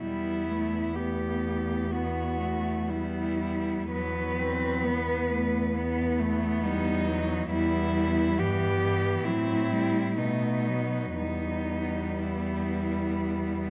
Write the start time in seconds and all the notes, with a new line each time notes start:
0.00 E2 G3 B3 E4
0.49 A3
0.95 A3 B3 G4
1.91 B3 F#4
2.40 A3
2.88 G3 B3 E4
3.90 E2 F#3 B3 B4
4.39 C4
4.84 B3
5.29 A3
5.74 B3
6.19 A3
6.63 G3 D#4
7.07 F#3
7.50 E2 G3 B3 E4
8.38 G2 E3 B3 G4
8.82 E3
9.25 A2 F#3 C4 E4
9.71 G3
10.18 B2 A3 B3 D#4
10.67 F#3
11.17 E2 G3 B3 D#4
12.22 E4